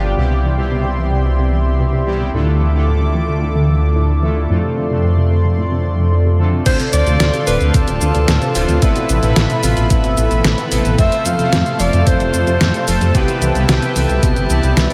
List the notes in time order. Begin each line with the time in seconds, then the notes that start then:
Already playing: G1 C3 G3 B3 D4 F4 G4 D5 F5 G5 D6
0.04 D3
0.17 C2 B2 C3 G3 B3 C4 E4 G4 E5 C6
0.31 C3
0.44 E3
0.58 C3 G3 B3 C4 E4 G4
0.71 B2
0.85 C3
0.98 E3
1.12 C3
1.25 B2
1.39 C3
1.52 E3
1.66 C3
1.80 B2
1.93 C3
2.07 E3 G3 B3 C4 E4 G4
2.20 C3
2.33 D2 A2 D3 A3 D4 E4 F4 A4 D6
2.47 D3
2.61 E3
2.74 D3 A3 D4 E4 F4 A4
2.88 A2
3.01 D3
3.15 E3
3.28 D3
3.42 A2
3.55 D3
3.69 E3
3.82 D3
3.96 A2
4.09 D3
4.23 E3 A3 D4 E4 F4 A4
4.36 D3
4.50 F2 A2 A3 C4 D4 F4 A4 D5 C6
4.63 C3
4.77 D3
4.90 C3 A3 C4 D4 F4 A4
5.04 A2
5.17 C3
5.31 D3
5.45 C3
5.58 A2
5.71 C3
5.85 D3
5.98 C3
6.12 A2
6.26 C3
6.39 D3 A3 C4 D4 F4 A4
6.53 C3
6.66 D2 A2 D3 C4 D4 F4 A4 C5 D5 F5 C6, kick, closed hi-hat, crash, shaker
6.80 C3, closed hi-hat, shaker
6.93 D2 D3 D5, closed hi-hat, shaker
7.07 D2 C3 D3 C4 D4 F4 A4 C5, closed hi-hat, shaker
7.20 D2 A2, snare, closed hi-hat, shaker
7.34 C3, closed hi-hat, shaker
7.47 D1 D3 B4, open hi-hat, shaker
7.61 D2 C3, closed hi-hat, shaker
7.74 D2 A2 A4, kick, closed hi-hat, shaker
7.88 D1 C3, closed hi-hat, shaker
8.01 D2 D3, closed hi-hat, shaker
8.15 D2 C3, closed hi-hat, shaker
8.28 D2 A2, snare, closed hi-hat, shaker
8.42 C3, closed hi-hat, shaker
8.55 D1 A2 D3 C4 D4 F4 A4 C5, open hi-hat, shaker
8.69 D2 C3, closed hi-hat, shaker
8.82 A1 A2 B3 C4 E4 A4 B4 E5 B5, kick, closed hi-hat, shaker
8.96 B2, closed hi-hat, shaker
9.09 A1 C3, closed hi-hat, shaker
9.23 A1 A2 B2 B3 C4 E4 A4 B4, closed hi-hat, shaker
9.36 A1 A2, snare, closed hi-hat, shaker
9.50 B2, closed hi-hat, shaker
9.63 A1 C3 F4, open hi-hat, shaker
9.77 A1 B2, closed hi-hat, shaker
9.90 A1 A2 E4, kick, closed hi-hat, shaker
10.04 G1 B2, closed hi-hat, shaker
10.17 A1 C3, closed hi-hat, shaker
10.31 A1 B2, closed hi-hat, shaker
10.44 A1 A2, snare, closed hi-hat, shaker
10.58 B2, closed hi-hat, shaker
10.71 A1 C3 B3 C4 E4 A4 B4, open hi-hat, shaker
10.85 A1 B2, closed hi-hat, shaker
10.98 F2 A2 A3 C4 F4 A4 C5 E5 F5 A5, kick, closed hi-hat, shaker
11.12 C3, closed hi-hat, shaker
11.26 F2 F3 F5, closed hi-hat, shaker
11.39 F2 C3 A3 C4 F4 A4 C5, closed hi-hat, shaker
11.53 F2 A2, snare, closed hi-hat, shaker
11.66 C3, closed hi-hat, shaker
11.80 F1 F3 D5, open hi-hat, shaker
11.93 F2 C3, closed hi-hat, shaker
12.07 F2 A2 C5, kick, closed hi-hat, shaker
12.20 F1 C3, closed hi-hat, shaker
12.34 F2 F3, closed hi-hat, shaker
12.47 F2 C3, closed hi-hat, shaker
12.61 F2 A2, snare, closed hi-hat, shaker
12.74 C3, closed hi-hat, shaker
12.88 F1 F3 A3 C4 F4 A4 C5, open hi-hat, shaker
13.01 F2 C3, closed hi-hat, shaker
13.15 C2 B2 C3 B3 C4 E4 G4 B4 E5 G5, kick, closed hi-hat, shaker
13.28 C3, closed hi-hat, shaker
13.41 C2 E3, closed hi-hat, shaker
13.55 C2 C3 B3 C4 E4 G4 B4, closed hi-hat, shaker
13.69 C2 B2 G4, snare, closed hi-hat, shaker
13.82 C3, closed hi-hat, shaker
13.96 C2 E3 A4, open hi-hat, shaker
14.09 C2 C3, closed hi-hat, shaker
14.23 C2 B2 G4, kick, closed hi-hat, shaker
14.36 G1 C3, closed hi-hat, shaker
14.50 C2 C3 E3 B3 C4 E4 G4 D5, closed hi-hat, shaker
14.63 C2 C3, closed hi-hat, shaker
14.77 C2 B2, snare, closed hi-hat, shaker
14.90 C3, closed hi-hat, shaker